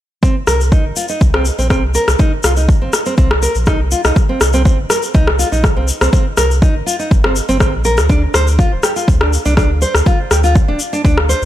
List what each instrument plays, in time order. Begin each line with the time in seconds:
0.23 nylon-string guitar C4, kick, shaker
0.47 sub bass C2, nylon-string guitar A#4, cross-stick, shaker
0.61 shaker
0.72 nylon-string guitar D#4, kick, shaker
0.85 sub bass G1
0.96 nylon-string guitar F4, shaker
1.08 nylon-string guitar D#4, shaker
1.21 sub bass C2, kick, shaker
1.34 nylon-string guitar C4, cross-stick
1.45 shaker
1.59 sub bass A#1, nylon-string guitar C4, shaker
1.70 nylon-string guitar C4, kick, cross-stick, shaker
1.83 sub bass C2
1.94 nylon-string guitar A#4, shaker
2.08 sub bass C2, cross-stick, shaker
2.19 nylon-string guitar D#4, kick, shaker
2.43 sub bass C2, nylon-string guitar F4, cross-stick, shaker
2.56 nylon-string guitar D#4, shaker
2.69 kick, shaker
2.82 sub bass G1, nylon-string guitar C4
2.93 cross-stick, shaker
3.06 nylon-string guitar C4, shaker
3.18 sub bass C2, nylon-string guitar C4, kick, shaker
3.31 cross-stick
3.42 nylon-string guitar A#4, shaker
3.55 sub bass A#1, shaker
3.66 nylon-string guitar D#4, kick, cross-stick, shaker
3.80 sub bass C2
3.91 nylon-string guitar F4, shaker
4.04 sub bass C2, nylon-string guitar D#4, cross-stick, shaker
4.16 kick, shaker
4.29 nylon-string guitar C4
4.41 sub bass C2, cross-stick, shaker
4.53 nylon-string guitar C4, shaker
4.65 kick, shaker
4.78 sub bass G1
4.90 nylon-string guitar A#4, cross-stick, shaker
5.03 shaker
5.14 sub bass C2, nylon-string guitar D#4, kick, shaker
5.27 cross-stick
5.39 nylon-string guitar F4, shaker
5.52 sub bass A#1, nylon-string guitar D#4, shaker
5.64 kick, cross-stick, shaker
5.76 sub bass C2, nylon-string guitar C4
5.88 shaker
6.01 sub bass C2, nylon-string guitar C4, cross-stick, shaker
6.13 nylon-string guitar C4, kick, shaker
6.37 sub bass C2, nylon-string guitar A#4, cross-stick, shaker
6.51 shaker
6.62 nylon-string guitar D#4, kick, shaker
6.75 sub bass G1
6.86 nylon-string guitar F4, shaker
6.99 nylon-string guitar D#4, shaker
7.11 sub bass G1, kick, shaker
7.24 nylon-string guitar C4, cross-stick
7.36 shaker
7.49 sub bass G1, nylon-string guitar C4, shaker
7.60 kick, cross-stick, shaker
7.73 sub bass A#1
7.85 nylon-string guitar A#4, shaker
7.98 sub bass D2, cross-stick, shaker
8.09 nylon-string guitar D4, kick, shaker
8.34 sub bass D2, nylon-string guitar C5, cross-stick, shaker
8.47 shaker
8.58 nylon-string guitar F4, kick, shaker
8.72 sub bass D1
8.83 nylon-string guitar G4, cross-stick, shaker
8.96 nylon-string guitar F4, shaker
9.08 sub bass D2, kick, shaker
9.21 nylon-string guitar D4, cross-stick
9.33 shaker
9.45 sub bass C2, nylon-string guitar D4, shaker
9.57 nylon-string guitar D4, kick, cross-stick, shaker
9.70 sub bass D2
9.82 nylon-string guitar C5, shaker
9.95 sub bass D2, cross-stick, shaker
10.06 nylon-string guitar F4, kick, shaker
10.31 sub bass D2, nylon-string guitar G4, cross-stick, shaker
10.44 nylon-string guitar F4, shaker
10.55 kick, shaker
10.68 sub bass D1, nylon-string guitar D4
10.80 shaker
10.93 nylon-string guitar D4, shaker
11.05 sub bass D2, nylon-string guitar D4, kick, shaker
11.18 cross-stick
11.29 nylon-string guitar C5, shaker